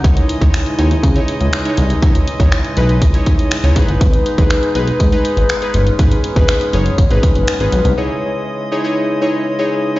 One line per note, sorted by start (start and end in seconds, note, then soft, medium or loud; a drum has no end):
0.04 0.21 C#2 loud
0.04 3.72 C#3 medium
0.04 3.72 E3 medium
0.04 7.94 G#3 medium
0.04 0.36 D#4 medium
0.04 0.36 E4 medium
0.04 0.36 C#5 medium
0.04 3.72 D#5 medium
0.04 kick loud
0.04 closed hi-hat medium
0.17 closed hi-hat medium
0.29 closed hi-hat medium
0.41 0.50 C#2 loud
0.41 0.73 D#4 medium
0.41 0.73 E4 medium
0.41 0.73 C#5 medium
0.41 kick loud
0.41 closed hi-hat medium
0.54 finger snap loud
0.54 closed hi-hat medium
0.66 closed hi-hat soft
0.79 0.95 D#2 medium
0.79 1.10 D#4 medium
0.79 1.10 E4 medium
0.79 1.10 C#5 medium
0.79 closed hi-hat medium
0.91 closed hi-hat medium
1.03 1.20 C#3 loud
1.03 kick medium
1.03 closed hi-hat medium
1.16 1.58 D#4 medium
1.16 1.58 E4 medium
1.16 1.58 C#5 medium
1.16 closed hi-hat soft
1.28 closed hi-hat medium
1.41 1.49 C#2 medium
1.41 closed hi-hat soft
1.53 finger snap loud
1.53 closed hi-hat medium
1.65 1.97 D#4 medium
1.65 1.97 E4 medium
1.65 1.97 C#5 medium
1.65 closed hi-hat medium
1.77 1.94 C2 loud
1.77 closed hi-hat medium
1.90 closed hi-hat medium
2.02 2.19 C#2 loud
2.02 2.34 D#4 medium
2.02 2.34 E4 medium
2.02 2.34 C#5 medium
2.02 kick loud
2.02 closed hi-hat medium
2.15 closed hi-hat medium
2.28 closed hi-hat medium
2.40 2.48 C#2 loud
2.40 2.71 D#4 medium
2.40 2.71 E4 medium
2.40 2.71 C#5 medium
2.40 kick loud
2.40 closed hi-hat medium
2.52 finger snap loud
2.52 closed hi-hat medium
2.64 closed hi-hat soft
2.77 3.03 B1 medium
2.77 3.08 D#4 medium
2.77 3.09 E4 medium
2.77 3.09 B4 medium
2.77 closed hi-hat medium
2.89 closed hi-hat medium
3.02 3.18 C#2 loud
3.02 kick medium
3.02 closed hi-hat medium
3.14 3.56 D#4 medium
3.14 3.56 E4 medium
3.14 3.56 C#5 medium
3.14 closed hi-hat soft
3.26 kick medium
3.26 closed hi-hat medium
3.39 closed hi-hat soft
3.51 finger snap loud
3.51 closed hi-hat medium
3.64 3.72 C#2 medium
3.64 3.75 D#4 medium
3.64 3.76 E4 medium
3.64 3.76 C#5 medium
3.64 closed hi-hat medium
3.76 3.84 G#1 loud
3.76 7.94 B3 medium
3.76 5.73 D#4 medium
3.76 4.29 D#4 medium
3.76 4.29 G#4 medium
3.76 4.29 B4 loud
3.76 kick loud
3.76 closed hi-hat medium
3.88 3.97 G1 medium
3.88 closed hi-hat soft
4.01 4.18 G#1 loud
4.01 kick loud
4.01 closed hi-hat medium
4.13 closed hi-hat medium
4.26 closed hi-hat medium
4.38 4.46 G#1 loud
4.38 4.70 D#4 medium
4.38 4.70 G#4 medium
4.38 4.70 B4 loud
4.38 kick loud
4.38 closed hi-hat medium
4.50 finger snap loud
4.50 closed hi-hat medium
4.63 closed hi-hat soft
4.75 4.92 B1 medium
4.75 5.07 D#4 medium
4.75 5.07 G#4 medium
4.75 5.07 B4 medium
4.75 closed hi-hat medium
4.87 closed hi-hat medium
5.00 5.17 G#2 loud
5.00 kick medium
5.00 closed hi-hat medium
5.12 5.54 D#4 medium
5.12 5.54 G#4 medium
5.12 5.55 B4 medium
5.12 closed hi-hat soft
5.25 closed hi-hat medium
5.37 5.45 G#1 medium
5.37 closed hi-hat soft
5.49 finger snap loud
5.49 closed hi-hat medium
5.62 5.93 D#4 medium
5.62 5.94 G#4 medium
5.62 5.94 B4 medium
5.62 closed hi-hat medium
5.74 5.91 G1 medium
5.74 7.95 C#4 medium
5.74 closed hi-hat medium
5.87 closed hi-hat medium
5.99 6.16 G#1 loud
5.99 6.31 D#4 medium
5.99 6.31 G#4 medium
5.99 6.31 B4 medium
5.99 kick loud
5.99 closed hi-hat medium
6.11 closed hi-hat medium
6.24 closed hi-hat medium
6.36 6.45 G#1 loud
6.36 6.68 D#4 medium
6.36 6.68 G#4 medium
6.36 6.68 B4 loud
6.36 kick medium
6.36 closed hi-hat medium
6.48 finger snap loud
6.48 closed hi-hat loud
6.61 closed hi-hat soft
6.73 6.90 F#1 loud
6.73 7.05 D#4 medium
6.73 7.05 G#4 medium
6.73 7.05 C#5 loud
6.73 closed hi-hat medium
6.86 closed hi-hat soft
6.98 7.07 G#1 loud
6.98 kick medium
6.98 closed hi-hat medium
7.11 7.19 G#1 loud
7.11 7.53 D#4 medium
7.11 7.53 G#4 medium
7.11 7.53 B4 medium
7.11 closed hi-hat soft
7.23 kick medium
7.23 closed hi-hat medium
7.35 7.44 F#1 medium
7.35 closed hi-hat soft
7.48 finger snap loud
7.48 closed hi-hat medium
7.60 7.69 G#1 medium
7.60 7.92 D#4 medium
7.60 7.92 G#4 medium
7.60 7.92 B4 medium
7.60 closed hi-hat medium
7.72 7.81 B1 loud
7.72 closed hi-hat medium
7.85 7.93 C2 medium
7.85 closed hi-hat medium
7.98 9.99 C#3 medium
7.98 9.99 E3 medium
7.98 9.99 G#3 medium
7.98 8.60 D#4 medium
7.98 8.60 E4 medium
7.98 8.61 G#4 medium
7.98 8.61 C#5 medium
7.98 9.99 D#5 medium
8.72 8.82 D#4 medium
8.72 8.82 E4 medium
8.72 8.82 G#4 medium
8.72 8.83 C#5 loud
8.84 9.16 D#4 medium
8.84 9.16 E4 medium
8.84 9.16 G#4 medium
8.84 9.16 C#5 loud
9.21 9.53 D#4 medium
9.21 9.53 E4 medium
9.21 9.53 G#4 medium
9.21 9.53 C#5 loud
9.59 9.90 D#4 medium
9.59 9.90 E4 medium
9.59 9.90 G#4 medium
9.59 9.90 C#5 loud
9.96 9.99 D#4 medium
9.96 9.99 E4 medium